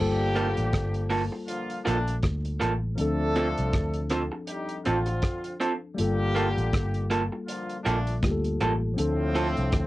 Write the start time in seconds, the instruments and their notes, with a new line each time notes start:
Already playing: horn section D3 G3 A#3 G4, tine electric piano G3 A#3 C5 A5
0.00 fingered electric bass G1, tine electric piano F4 A4
0.36 clean electric guitar A#3 F4 A4, closed hi-hat
0.57 fingered electric bass A1, closed hi-hat
0.73 kick, cross-stick, closed hi-hat
0.94 closed hi-hat
1.10 clean electric guitar A#3 F4 A4, open hi-hat
1.32 muted clean electric guitar stroke
1.47 horn section D3 F3 A#3 F4, closed hi-hat
1.70 closed hi-hat
1.84 fingered electric bass A#1, horn section A#2 D3 A3 D4, clean electric guitar A#3 F4 A4, closed hi-hat
2.08 closed hi-hat
2.23 fingered electric bass D2, kick, cross-stick, closed hi-hat
2.45 closed hi-hat
2.60 fingered electric bass A1, clean electric guitar A#3 F4 A4, cross-stick, closed hi-hat
2.96 tine electric piano F3 C4, horn section F3 A3 D4 A4, closed hi-hat
3.00 fingered electric bass D2, tine electric piano D4 A4
3.36 clean electric guitar C4 F4 A4, closed hi-hat
3.57 fingered electric bass C2, closed hi-hat
3.73 fingered electric bass D2, kick, cross-stick, closed hi-hat
3.94 closed hi-hat
4.10 clean electric guitar C4 F4 A4, cross-stick, closed hi-hat
4.32 muted clean electric guitar stroke
4.47 horn section G3 D#4 G4, closed hi-hat
4.69 closed hi-hat
4.85 fingered electric bass A1, horn section D3 F3 C4 F4, clean electric guitar C4 F4 A4, closed hi-hat
5.06 muted clean electric guitar stroke, closed hi-hat
5.22 kick, cross-stick, closed hi-hat
5.44 closed hi-hat
5.60 clean electric guitar C4 F4 A4, closed hi-hat
5.95 horn section D3 G3 A#3 G4, tine electric piano G3 A#3 F4, closed hi-hat
5.99 fingered electric bass G1, tine electric piano A4
6.35 clean electric guitar A#3 F4 A4, closed hi-hat
6.57 fingered electric bass A1, closed hi-hat
6.73 fingered electric bass G1, kick, cross-stick, closed hi-hat
6.94 closed hi-hat
7.10 clean electric guitar A#3 F4 A4, closed hi-hat
7.32 muted clean electric guitar stroke
7.47 horn section D3 F3 A#3 F4, closed hi-hat
7.70 closed hi-hat
7.83 fingered electric bass A#1, horn section A#2 D3 A3 D4, clean electric guitar A#3 F4 A4, closed hi-hat
8.07 closed hi-hat
8.21 fingered electric bass D2, tine electric piano G3 A#3 F4 G4, kick, cross-stick, closed hi-hat
8.31 tine electric piano A4
8.44 closed hi-hat
8.61 fingered electric bass A1, clean electric guitar A#3 F4 A4, closed hi-hat
8.94 horn section A2 F3 C4, tine electric piano F3 C4
8.98 fingered electric bass D2, tine electric piano D4 A4, closed hi-hat
9.35 clean electric guitar C4 F4 A4, closed hi-hat
9.57 fingered electric bass C2, closed hi-hat
9.72 fingered electric bass D2, kick, cross-stick, closed hi-hat